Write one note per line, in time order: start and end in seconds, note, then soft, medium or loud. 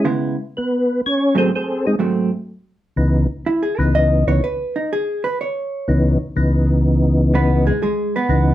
0.05 0.35 C#3 medium
0.05 0.35 G#3 medium
0.05 0.35 B3 medium
0.05 0.35 E4 medium
0.57 1.02 B3 medium
0.57 1.01 B4 medium
1.06 1.37 C#4 medium
1.06 1.37 C#5 loud
1.35 1.49 G#2 medium
1.35 1.49 F#3 medium
1.35 1.50 A3 medium
1.35 1.50 C4 medium
1.35 1.52 C4 medium
1.35 1.52 G#4 medium
1.35 1.52 A4 medium
1.35 1.52 C5 loud
1.55 1.86 C4 medium
1.55 1.85 G#4 medium
1.55 1.86 A4 medium
1.55 1.86 C5 medium
1.86 1.95 G#3 medium
1.86 1.96 C4 medium
1.86 1.95 D#4 medium
1.86 1.95 G#4 loud
1.99 2.29 G#2 medium
1.99 2.30 F#3 medium
1.99 2.30 A3 medium
1.99 2.30 C4 medium
2.96 3.27 C#2 medium
2.96 3.27 C#3 medium
2.96 3.27 E3 medium
2.96 3.27 B3 medium
2.96 3.27 D#4 medium
3.46 3.62 E4 medium
3.63 3.78 G#4 medium
3.78 4.24 C#2 medium
3.78 4.24 C#3 medium
3.78 4.24 E3 medium
3.78 4.24 B3 medium
3.78 4.24 D#4 medium
3.78 3.94 B4 medium
3.95 4.27 D#5 loud
4.27 4.41 C#2 medium
4.27 4.41 C#3 medium
4.27 4.41 E3 medium
4.27 4.41 B3 medium
4.27 4.41 D#4 medium
4.27 4.42 C#5 medium
4.44 4.75 B4 medium
4.76 4.91 D#4 medium
4.93 5.24 G#4 medium
5.24 5.39 B4 medium
5.41 6.18 C#5 medium
5.88 6.18 C#2 medium
5.88 6.18 C#3 medium
5.88 6.18 E3 medium
5.88 6.18 B3 medium
5.88 6.18 D#4 medium
6.36 7.72 C#2 medium
6.36 7.72 C#3 medium
6.36 7.73 E3 medium
6.36 7.73 B3 medium
6.36 7.73 D#4 medium
7.35 7.66 B3 medium
7.35 7.66 B4 medium
7.67 7.81 G#3 medium
7.67 7.81 G#4 medium
7.83 8.15 G#3 medium
7.83 8.14 G#4 medium
8.16 8.54 B3 medium
8.16 8.54 B4 medium
8.28 8.54 C#2 medium
8.28 8.54 C#3 medium
8.28 8.54 E3 medium
8.28 8.54 B3 medium
8.28 8.54 D#4 medium